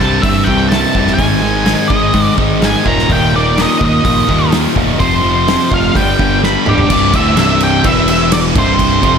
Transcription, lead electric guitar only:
0, 0, Header, 1, 2, 480
1, 0, Start_track
1, 0, Tempo, 475436
1, 1200, Time_signature, 4, 2, 24, 8
1, 9272, End_track
2, 0, Start_track
2, 0, Title_t, "Lead electric guitar"
2, 0, Program_c, 0, 29
2, 0, Note_on_c, 0, 81, 93
2, 221, Note_on_c, 0, 76, 97
2, 239, Note_off_c, 0, 81, 0
2, 444, Note_on_c, 0, 79, 91
2, 478, Note_off_c, 0, 76, 0
2, 689, Note_off_c, 0, 79, 0
2, 693, Note_on_c, 0, 81, 106
2, 1146, Note_off_c, 0, 81, 0
2, 1150, Note_on_c, 0, 80, 92
2, 1896, Note_on_c, 0, 75, 68
2, 1920, Note_off_c, 0, 80, 0
2, 2239, Note_off_c, 0, 75, 0
2, 2239, Note_on_c, 0, 74, 68
2, 2356, Note_off_c, 0, 74, 0
2, 2676, Note_on_c, 0, 80, 106
2, 2885, Note_off_c, 0, 80, 0
2, 2905, Note_on_c, 0, 82, 86
2, 3142, Note_off_c, 0, 82, 0
2, 3153, Note_on_c, 0, 79, 100
2, 3364, Note_off_c, 0, 79, 0
2, 3392, Note_on_c, 0, 74, 79
2, 3626, Note_off_c, 0, 74, 0
2, 3658, Note_on_c, 0, 75, 81
2, 3879, Note_off_c, 0, 75, 0
2, 3890, Note_on_c, 0, 75, 74
2, 4549, Note_off_c, 0, 75, 0
2, 5046, Note_on_c, 0, 72, 82
2, 5788, Note_off_c, 0, 72, 0
2, 5795, Note_on_c, 0, 77, 94
2, 6022, Note_on_c, 0, 79, 99
2, 6027, Note_off_c, 0, 77, 0
2, 6460, Note_off_c, 0, 79, 0
2, 6510, Note_on_c, 0, 83, 106
2, 6754, Note_on_c, 0, 74, 82
2, 6944, Note_off_c, 0, 83, 0
2, 7223, Note_off_c, 0, 74, 0
2, 7228, Note_on_c, 0, 76, 94
2, 7450, Note_off_c, 0, 76, 0
2, 7462, Note_on_c, 0, 76, 98
2, 7676, Note_off_c, 0, 76, 0
2, 7709, Note_on_c, 0, 79, 106
2, 7938, Note_on_c, 0, 76, 111
2, 7941, Note_off_c, 0, 79, 0
2, 8152, Note_off_c, 0, 76, 0
2, 8175, Note_on_c, 0, 76, 108
2, 8403, Note_off_c, 0, 76, 0
2, 8407, Note_on_c, 0, 74, 113
2, 8471, Note_off_c, 0, 74, 0
2, 8669, Note_on_c, 0, 72, 75
2, 9272, Note_off_c, 0, 72, 0
2, 9272, End_track
0, 0, End_of_file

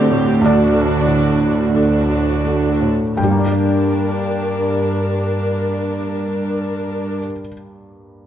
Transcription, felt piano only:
0, 0, Header, 1, 2, 480
1, 0, Start_track
1, 0, Key_signature, -2, "minor"
1, 0, Tempo, 1298701
1, 651, Tempo, 1398601
1, 1137, Time_signature, 4, 2, 24, 8
1, 2884, End_track
2, 0, Start_track
2, 0, Title_t, "Felt piano"
2, 0, Program_c, 0, 0
2, 0, Control_c, 0, 64, 127
2, 0, Note_on_c, 0, 38, 46
2, 0, Note_on_c, 0, 45, 35
2, 0, Note_on_c, 0, 57, 39
2, 0, Note_on_c, 0, 62, 40
2, 0, Note_on_c, 0, 69, 40
2, 0, Note_on_c, 0, 74, 69
2, 0, Note_on_c, 0, 78, 72
2, 40, Note_off_c, 0, 45, 0
2, 40, Note_on_c, 0, 45, 35
2, 114, Note_off_c, 0, 57, 0
2, 147, Note_off_c, 0, 38, 0
2, 150, Note_off_c, 0, 74, 0
2, 153, Note_on_c, 0, 38, 42
2, 169, Note_on_c, 0, 74, 57
2, 229, Note_off_c, 0, 45, 0
2, 268, Note_on_c, 0, 57, 31
2, 390, Note_on_c, 0, 45, 32
2, 469, Note_off_c, 0, 57, 0
2, 517, Note_off_c, 0, 62, 0
2, 517, Note_on_c, 0, 62, 32
2, 594, Note_off_c, 0, 45, 0
2, 639, Note_off_c, 0, 74, 0
2, 645, Note_off_c, 0, 69, 0
2, 645, Note_on_c, 0, 69, 32
2, 719, Note_off_c, 0, 62, 0
2, 767, Note_on_c, 0, 62, 32
2, 841, Note_off_c, 0, 69, 0
2, 887, Note_on_c, 0, 57, 27
2, 966, Note_off_c, 0, 62, 0
2, 1012, Note_on_c, 0, 45, 23
2, 1086, Note_off_c, 0, 57, 0
2, 1119, Note_off_c, 0, 38, 0
2, 1134, Note_off_c, 0, 45, 0
2, 1134, Note_on_c, 0, 43, 30
2, 1136, Note_on_c, 0, 79, 40
2, 1146, Control_c, 0, 64, 0
2, 1147, Note_off_c, 0, 78, 0
2, 1158, Note_on_c, 0, 55, 30
2, 1181, Note_on_c, 0, 58, 29
2, 1207, Note_on_c, 0, 62, 29
2, 1222, Control_c, 0, 64, 127
2, 1231, Note_on_c, 0, 67, 27
2, 1254, Note_on_c, 0, 74, 30
2, 2511, Note_off_c, 0, 43, 0
2, 2513, Note_off_c, 0, 79, 0
2, 2535, Note_off_c, 0, 55, 0
2, 2559, Note_off_c, 0, 58, 0
2, 2585, Note_off_c, 0, 62, 0
2, 2608, Note_off_c, 0, 67, 0
2, 2631, Note_off_c, 0, 74, 0
2, 2884, End_track
0, 0, End_of_file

